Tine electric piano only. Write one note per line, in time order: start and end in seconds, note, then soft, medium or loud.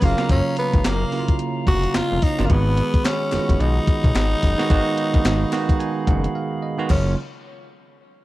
0.02 0.91 C#3 medium
0.02 0.91 F#3 medium
0.02 0.92 A#3 medium
0.02 0.92 F4 medium
1.12 1.98 C#3 medium
1.12 1.99 F#3 medium
1.12 1.99 A#3 medium
1.12 1.20 E4 medium
1.20 2.02 F4 medium
2.39 2.47 C#3 medium
2.39 2.47 F#3 medium
2.39 2.48 A#3 medium
2.39 2.48 F4 medium
2.49 3.16 D#3 medium
2.49 3.16 G#3 medium
2.49 3.16 B3 medium
2.49 3.16 F#4 medium
3.32 4.19 D#3 medium
3.32 4.19 G#3 medium
3.32 4.19 B3 medium
3.32 3.41 F4 medium
3.39 4.22 F#4 medium
4.58 4.67 D#3 loud
4.58 4.67 G#3 medium
4.58 4.68 B3 medium
4.58 4.68 F#4 loud
4.69 5.36 D#3 medium
4.69 5.36 G#3 medium
4.69 5.36 B3 medium
4.69 5.37 F#4 loud
5.52 6.39 D#3 medium
5.52 6.39 G#3 medium
5.52 6.39 B3 medium
5.52 6.39 F#4 loud
5.52 5.78 A#5 medium
5.80 6.05 G#5 medium
6.07 6.33 F#5 medium
6.35 6.61 F5 medium
6.62 6.88 D#5 medium
6.78 6.87 D#3 medium
6.78 6.87 G#3 medium
6.78 6.87 B3 medium
6.78 6.88 F#4 loud
6.89 7.15 C#3 medium
6.89 7.15 F#3 medium
6.89 7.15 A#3 medium
6.89 7.15 F4 medium